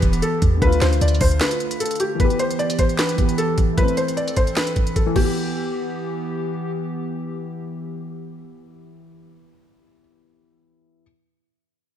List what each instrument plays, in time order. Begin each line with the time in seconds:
Already playing: grand piano E3 B3 G4, analog synth pad E3 B3 G4, felt piano B4
0.02 808-style bass E1, kick, closed hi-hat
0.13 closed hi-hat
0.22 felt piano A4, closed hi-hat
0.42 808-style bass E2, kick, closed hi-hat
0.57 grand piano D3
0.62 808-style bass D2, analog synth pad D3 A3 F4, grand piano A3, felt piano B4, kick, closed hi-hat
0.67 grand piano F4
0.72 closed hi-hat
0.81 808-style bass D2, felt piano C5, snare, clap, closed hi-hat
0.93 closed hi-hat
1.01 808-style bass D2, felt piano D5, closed hi-hat
1.08 closed hi-hat
1.15 closed hi-hat
1.21 808-style bass D2, felt piano C5, kick, open hi-hat
1.31 closed hi-hat
1.40 felt piano B4, snare, clap, closed hi-hat
1.51 closed hi-hat
1.60 closed hi-hat
1.71 closed hi-hat
1.80 felt piano A4, closed hi-hat
1.86 closed hi-hat
1.91 closed hi-hat
1.95 closed hi-hat
2.00 felt piano G4, closed hi-hat
2.15 grand piano E3
2.20 analog synth pad E3 B3 G4, grand piano B3, felt piano B4, kick, closed hi-hat
2.24 grand piano G4
2.30 closed hi-hat
2.39 felt piano C5, closed hi-hat
2.51 closed hi-hat
2.59 felt piano D5, closed hi-hat
2.70 closed hi-hat
2.79 felt piano C5, kick, closed hi-hat
2.89 closed hi-hat
2.98 felt piano B4, snare, clap, closed hi-hat
3.09 closed hi-hat
3.16 grand piano E3 B3, kick, closed hi-hat
3.21 grand piano G4
3.29 closed hi-hat
3.38 felt piano A4, closed hi-hat
3.58 kick, closed hi-hat
3.73 grand piano A3
3.77 analog synth pad C4 A4, grand piano E4, felt piano B4, kick, closed hi-hat
3.83 grand piano C4
3.88 closed hi-hat
3.97 felt piano C5, closed hi-hat
4.08 closed hi-hat
4.17 felt piano D5, closed hi-hat
4.28 closed hi-hat
4.37 felt piano C5, kick, closed hi-hat
4.47 closed hi-hat
4.56 felt piano B4, snare, clap, closed hi-hat
4.67 closed hi-hat
4.76 kick, closed hi-hat
4.87 closed hi-hat
4.96 felt piano A4, kick, closed hi-hat
5.06 grand piano E3
5.16 analog synth pad E3 B3 G4, grand piano B3, felt piano G4, kick, crash
5.25 grand piano G4